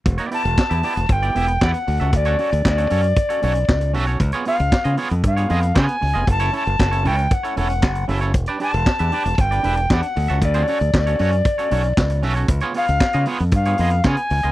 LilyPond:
<<
  \new Staff \with { instrumentName = "Recorder" } { \time 4/4 \key e \dorian \tempo 4 = 116 r8 a''4. g''4 fis''4 | d''4 d''2~ d''8 r8 | r8 eis''4 r8 eis''4 gis''4 | a''8 a''4 g''8 fis''8 fis''4 r8 |
r8 a''4. g''4 fis''4 | d''4 d''2~ d''8 r8 | r8 eis''4 r8 eis''4 gis''4 | }
  \new Staff \with { instrumentName = "Clean electric guitar" } { \time 4/4 \key e \dorian r16 <b e' g' d''>16 <b e' g' d''>16 r8 <b e' g' e''>16 <b e' g' d''>16 r8 <b e' g' d''>16 <b e' g' e''>16 r16 <b e' g' d''>16 r8 <cis' fis' a' e''>16 | r16 <cis' fis' a' cis''>16 <cis' fis' a' cis''>16 r8 <cis' fis' a' cis''>16 <cis' fis' a' cis''>16 r8 <cis' fis' a' cis''>16 <cis' fis' a' cis''>16 r8. <cis' fis' a' e''>16 <cis' fis' a' cis''>16 | r16 <b eis' gis' cis''>16 <b eis' gis' cis''>16 r8 <b eis' gis' dis''>16 <b eis' gis' cis''>16 r8 <b eis' gis' cis''>16 <b eis' gis' dis''>16 r16 <b eis' gis' cis''>8 r16 <b eis' gis' dis''>16 | r16 <cis' e' a' cis''>16 <cis' e' a' cis''>16 r8 <cis' e' a' cis''>16 <cis' e' a' cis''>16 r8 <cis' e' a' cis''>16 <cis' e' a' cis''>16 r8. <cis' e' a' e''>16 <cis' e' a' cis''>16 |
r16 <d' g' b' d''>16 <d' g' b' d''>16 r8 <d' g' b' e''>16 <d' g' b' d''>16 r8 <d' g' b' d''>16 <d' g' b' e''>16 r16 <d' g' b' d''>16 r8 <cis' fis' a' e''>16 | r16 <cis' fis' a' cis''>16 <cis' fis' a' cis''>16 r8 <cis' fis' a' cis''>16 <cis' fis' a' cis''>16 r8 <cis' fis' a' cis''>16 <cis' fis' a' cis''>16 r8. <cis' fis' a' e''>16 <cis' fis' a' cis''>16 | r16 <b eis' gis' cis''>16 <b eis' gis' cis''>16 r8 <b eis' gis' dis''>16 <b eis' gis' cis''>16 r8 <b eis' gis' cis''>16 <b eis' gis' dis''>16 r16 <b eis' gis' cis''>16 r8 <b eis' gis' dis''>16 | }
  \new Staff \with { instrumentName = "Fingered electric bass" } { \clef bass \time 4/4 \key e \dorian e,,16 r8 e,,16 r16 e,16 r16 e,,16 g,,8 e,,8 e,16 r16 d,16 cis,16 | d,8 r16 d,16 d,8 fis,8 r8 b,,8 cis,8 b,,8 | cis,16 r8 cis,16 r16 cis16 r16 eis,16 g,8 eis,8 cis16 r16 cis,16 eis,,16 | fis,,8 r16 fis,,16 fis,,8 cis,8 r8 e,,8 fis,,8 fis,,8 |
e,,16 r8 e,,16 r16 e,16 r16 e,,16 g,,8 e,,8 e,16 r16 d,16 cis,16 | d,8 r16 d,16 d,8 fis,8 r8 b,,8 cis,8 b,,8 | cis,16 r8 cis,16 r16 cis16 r16 eis,16 g,8 eis,8 cis16 r16 cis,16 cis,16 | }
  \new DrumStaff \with { instrumentName = "Drums" } \drummode { \time 4/4 <hh bd>16 hh16 hho16 hh16 <hc bd sn>16 hh16 hho16 hh16 <hh bd>16 hh16 hho16 hh16 <hc bd sn>16 hh16 hho16 hh16 | <hh bd>16 hh16 hho16 hh16 <hc bd sn>16 hh16 hho16 hh16 <hh bd>16 hh16 hho16 hh16 <hc bd sn>16 hh16 <hho sn>16 hh16 | <hh bd>16 hh16 hho16 hh16 <hc bd sn>16 hh16 hho16 hh16 <hh bd>16 hh16 hho16 hh16 <hc bd sn>16 hh16 <hho sn>16 hh16 | <hh bd>16 hh16 hho16 hh16 <hc bd sn>16 hh16 hho16 hh16 <hh bd>16 hh16 hho16 hh16 <hc bd sn>16 hh16 <hho sn>16 hh16 |
<hh bd>16 hh16 hho16 hh16 <hc bd sn>16 hh16 hho16 hh16 <hh bd>16 hh16 hho16 hh16 <hc bd sn>16 hh16 <hho sn>16 hh16 | <hh bd>16 hh16 hho16 hh16 <hc bd sn>16 hh16 hho16 hh16 <hh bd>16 hh16 hho16 hh16 <hc bd sn>16 hh16 hho16 hh16 | <hh bd>16 hh16 hho16 hh16 <hc bd sn>16 hh16 hho16 hh16 <hh bd>16 hh16 hho16 hh16 <hc bd sn>16 hh16 <hho sn>16 hh16 | }
>>